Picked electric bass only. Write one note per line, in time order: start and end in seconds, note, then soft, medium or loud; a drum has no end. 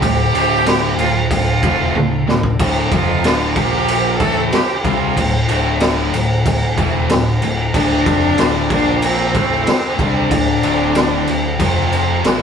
0.02 0.32 D1 medium
0.34 0.95 D1 loud
0.98 1.29 D1 medium
1.31 1.61 D1 medium
1.63 1.93 E1 medium
1.95 2.25 D1 medium
2.27 2.57 D1 medium
2.59 2.90 D1 loud
2.91 3.22 F1 loud
3.24 3.54 D1 loud
3.56 4.17 A#1 loud
4.20 4.50 A1 medium
4.53 muted picked electric bass stroke soft
4.84 5.15 C2 loud
5.17 5.47 D1 medium
5.49 6.10 D1 loud
6.13 6.43 D1 medium
6.46 6.76 D1 medium
6.78 7.08 E1 loud
7.10 7.40 D1 medium
7.43 7.73 D1 medium
7.74 8.04 D1 loud
8.06 8.36 F1 loud
8.39 8.68 D1 loud
8.70 9.31 A#1 loud
9.35 9.65 A1 loud
9.68 muted picked electric bass stroke soft
9.99 10.29 C2 loud
10.31 10.61 D1 medium
10.64 11.24 D1 loud
11.28 11.58 D1 medium
11.60 12.20 F1 loud
12.24 12.42 A1 loud